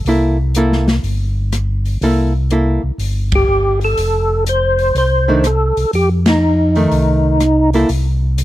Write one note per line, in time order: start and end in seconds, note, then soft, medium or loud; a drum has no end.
0.05 0.99 C2 medium
0.05 0.36 A#3 soft
0.05 0.37 E4 medium
0.05 open hi-hat soft
0.09 0.37 A4 medium
0.55 0.85 A#3 medium
0.55 0.86 E4 medium
0.55 0.86 A4 medium
0.55 closed hi-hat soft
0.72 snare soft
0.88 snare soft
0.88 open hi-hat soft
1.03 1.98 G1 medium
1.03 open hi-hat soft
1.52 cross-stick medium
1.52 closed hi-hat soft
1.85 open hi-hat soft
2.01 2.79 C2 medium
2.01 2.32 A#3 soft
2.01 2.32 E4 medium
2.01 2.32 A4 medium
2.01 open hi-hat soft
2.50 2.81 A#3 soft
2.50 2.81 E4 soft
2.50 2.81 A4 soft
2.50 closed hi-hat soft
2.83 2.91 C2 soft
2.98 3.45 G1 medium
2.98 open hi-hat soft
3.32 3.80 G4 medium
3.32 kick medium
3.32 ride medium
3.49 3.94 G1 medium
3.81 4.44 A4 medium
3.81 open hi-hat soft
3.97 4.91 F1 medium
3.97 open hi-hat soft
4.46 4.97 C5 medium
4.46 closed hi-hat soft
4.79 open hi-hat soft
4.95 5.73 C2 medium
4.95 5.47 C5 medium
4.95 open hi-hat soft
5.28 5.43 D#3 medium
5.28 5.43 A3 medium
5.28 5.44 D4 medium
5.44 5.91 A4 medium
5.44 cross-stick medium
5.44 closed hi-hat soft
5.77 5.85 C2 soft
5.77 open hi-hat soft
5.93 6.87 F2 medium
5.93 6.09 G4 medium
5.93 open hi-hat soft
6.26 7.70 D#4 medium
6.26 snare medium
6.26 ride medium
6.75 7.38 D#3 medium
6.75 7.38 A3 medium
6.75 open hi-hat soft
6.91 7.85 C2 medium
6.91 open hi-hat soft
7.40 cross-stick soft
7.40 closed hi-hat soft
7.73 7.88 A#3 medium
7.73 7.89 E4 medium
7.73 7.89 A4 medium
7.73 open hi-hat soft
7.89 8.44 C2 medium
7.89 open hi-hat soft
8.38 closed hi-hat soft